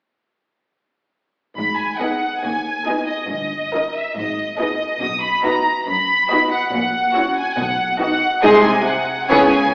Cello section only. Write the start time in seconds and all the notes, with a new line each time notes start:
1.58 G#2
2.44 D#2
3.31 G2
4.17 G#2
5.03 B2
5.88 F#2
6.73 A#2
7.58 B2
8.44 C3
9.29 C#3